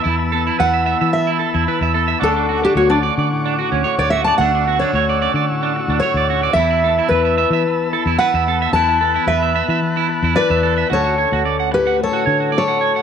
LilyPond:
<<
  \new Staff \with { instrumentName = "Transistor combo organ" } { \time 4/4 \key d \major \tempo 4 = 110 << { e'''1 | d'''1 | e'''1 | e'''1 |
fis'''1 | r1 | } \\ { <a'' b''>1 | <fis'' cis'''>1~ | <fis'' cis'''>1 | <a'' b''>1~ |
<a'' b''>1 | r1 | } >> }
  \new Staff \with { instrumentName = "Steel-string acoustic guitar" } { \time 4/4 \key d \major r4 fis''4 e''8 r4. | a'8. g'16 fis'16 d'16 r4. r16 cis''16 e''16 a''16 | fis''8. cis''4 r4 r16 cis''4 | e''4 b'4. r8 fis''4 |
a''4 e''4. r8 <b' d''>4 | <a' cis''>4. <g' b'>8 <a' cis''>4 <a' cis''>4 | }
  \new Staff \with { instrumentName = "Clean electric guitar" } { \time 4/4 \key d \major e'16 r16 a'16 e'16 b'16 e''16 e''16 e''16 r16 e'16 a'16 e'16 b'16 e''16 a'16 e''16 | d'16 d'16 fis'16 d'16 cis''16 d''16 d''16 d''16 r16 d'16 fis'16 cis'16 cis''16 d''16 fis'16 d''16 | d'16 d'16 fis'16 d'16 cis''16 d''16 d''16 d''16 r16 d'16 r16 d'16 cis''16 d''16 fis'16 d''16 | e'16 e'16 a'16 e'16 b'16 e''16 e''16 e''16 r8 a'16 e'16 b'16 e''16 a'16 e''16 |
e'16 e'16 a'16 e'16 b'16 e''16 e''16 e''16 r16 e'16 r16 e'16 b'16 e''16 a'16 e''16 | fis'16 fis'16 cis''16 fis'16 d''16 fis''16 r16 fis''16 r16 fis'16 cis''16 fis'16 d''16 fis''16 cis''16 fis''16 | }
  \new Staff \with { instrumentName = "Clean electric guitar" } { \time 4/4 \key d \major << { <b e'>8 b8 e'8 b4 e'8 e'8 b8 | <cis' fis'>8 cis'8 b16 cis'16 cis'4 fis'8 fis'8 cis'8 | <cis' fis'>8 b16 cis'16 fis'8 cis'4 fis'8 fis'8 cis'8 | <b e'>8 b8 e'8 b4 e'8 e'8 b8 |
<b e'>8 b8 e'8 b4 e'8 e'8 b8 | <cis' fis'>4 cis'8 e'16 fis'16 cis'8 fis'8 fis'8 fis'8 | } \\ { e,4 e4 e,4 e4 | d4 a4 a,4 a4 | d4 a4 a,4 a4 | e,4 e4 e,4 e4 |
e,4 e4 e,4 e4 | d4 a4 a,4 a4 | } >> }
  \new Staff \with { instrumentName = "Fingered electric bass" } { \clef bass \time 4/4 \key d \major e,4 e,8. e4 e,16 r16 e,8. | d,4 d,8. d4 d,16 r16 d,8. | d,4 d,8. d4 d,16 r16 d,8. | e,4 e,8. e4 e,16 r16 e,8. |
e,4 e,8. e4 e,16 r16 e,8. | d,8. d,4.~ d,16 d4. | }
>>